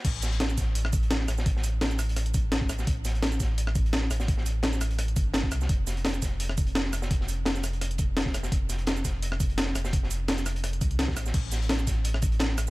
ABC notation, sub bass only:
X:1
M:4/4
L:1/8
Q:"Swing 16ths" 1/4=170
K:Am
V:1 name="Sub bass" clef=bass
A,,,6- A,,, A,,,- | A,,,6- A,,, A,,, | A,,,6- A,,, A,,,- | A,,,4- A,,, G,,,2 C,, |
F,,,6- F,,, F,,,- | F,,,6- F,,, F,,, | F,,,6- F,,, F,,,- | F,,,4- F,,, C,,2 A,,, |
A,,,6- A,,, A,,, |]